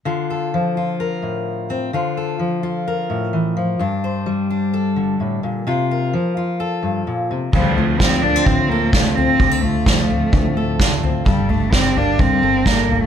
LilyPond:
<<
  \new Staff \with { instrumentName = "Steel-string acoustic guitar" } { \time 4/4 \key d \minor \tempo 4 = 129 << { f'8 a'4 f'8 bes'4. c'8 | f'8 a'4 f'8 bes'2 | d'8 c''4 d'8 a'2 | f'8 bes'4 f'8 a'2 |
<f c' f' a'>8 f'4 bes16 c'8. a'8 f'8 c'8 | g'16 a'16 f'4 c'4 a'8 f'8 c'8 | a'8 d'4 bes4 a'4. | } \\ { d4 f4. a,4. | d4 f4. a,8 e8 f8 | g,4 g4. d8 a,8 bes,8 | c4 f4. g,8 bes,8 c8 |
d4 f4 a,2 | d4 f4 a,2 | g,4 g4 d4 a,8 bes,8 | } >> }
  \new Staff \with { instrumentName = "Cello" } { \time 4/4 \key d \minor r1 | r1 | r1 | r1 |
g8 a8 c'8 d'8 c'8 bes8 a8 c'8~ | c'8 a2. r8 | g8 a8 c'8 d'8 c'4 bes8. a16 | }
  \new Staff \with { instrumentName = "Fingered electric bass" } { \clef bass \time 4/4 \key d \minor r1 | r1 | r1 | r1 |
d,2 d8 d,4. | d,2 d8 d,4. | g,,2 g,8 g,,4. | }
  \new DrumStaff \with { instrumentName = "Drums" } \drummode { \time 4/4 r4 r4 r4 r4 | r4 r4 r4 r4 | r4 r4 r4 r4 | r4 r4 r4 r4 |
<cymc bd tomfh>8 tomfh8 <bd sn>8 tomfh8 <bd tomfh>4 <bd sn>8 tomfh8 | <bd tomfh>8 tomfh8 <bd sn>8 tomfh8 <bd tomfh>4 <bd sn>8 tomfh8 | <bd tomfh>8 tomfh8 <bd sn>8 tomfh8 <bd tomfh>4 <bd sn>8 tomfh8 | }
>>